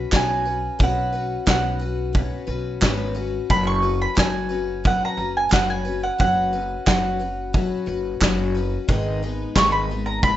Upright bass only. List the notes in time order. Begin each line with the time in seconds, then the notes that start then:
0.12 B1
0.80 B1
1.47 B1
2.48 B1
2.82 G#1
3.50 F#1
4.18 F#1
5.17 F#1
5.52 F#1
6.20 F#1
6.87 F#1
7.87 F#1
8.21 F#1
8.89 G#1
9.56 G#1